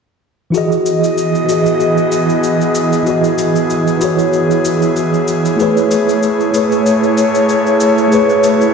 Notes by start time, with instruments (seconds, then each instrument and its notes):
0.50 tine electric piano E3 E4 F#4, analog synth pad E4 D#5, cabasa
0.54 analog synth pad B3 G#4, tine electric piano G#4 D#5
0.72 cabasa
0.86 cabasa
1.04 cabasa
1.18 cabasa
1.35 cabasa
1.45 tine electric piano E3 E4 F#4
1.49 tine electric piano G#4 D#5, cabasa
1.66 cabasa
1.80 cabasa
1.97 cabasa
2.12 cabasa
2.29 cabasa
2.43 cabasa
2.61 cabasa
2.75 cabasa
2.93 cabasa
3.03 tine electric piano E3 E4 F#4, cabasa
3.08 tine electric piano G#4 D#5
3.24 cabasa
3.38 cabasa
3.56 cabasa
3.70 cabasa
3.87 cabasa
3.97 tine electric piano E3 E4 F#4
4.01 tine electric piano G#4 C#5, cabasa
4.19 cabasa
4.33 cabasa
4.51 cabasa
4.65 cabasa
4.82 cabasa
4.96 cabasa
5.14 cabasa
5.28 cabasa
5.45 cabasa
5.56 tine electric piano A3 E4 G#4, analog synth pad A3 C#5, cabasa
5.61 tine electric piano B4 C#5
5.77 cabasa
5.91 cabasa
6.09 cabasa
6.23 cabasa
6.40 cabasa
6.51 tine electric piano A3 E4 G#4, cabasa
6.56 tine electric piano B4 C#5
6.72 cabasa
6.86 cabasa
7.03 cabasa
7.17 cabasa
7.35 cabasa
7.49 cabasa
7.66 cabasa
7.80 cabasa
7.98 cabasa
8.08 tine electric piano A3 E4 G#4, analog synth pad F#4
8.12 tine electric piano B4 C#5, cabasa
8.29 cabasa
8.44 cabasa
8.61 cabasa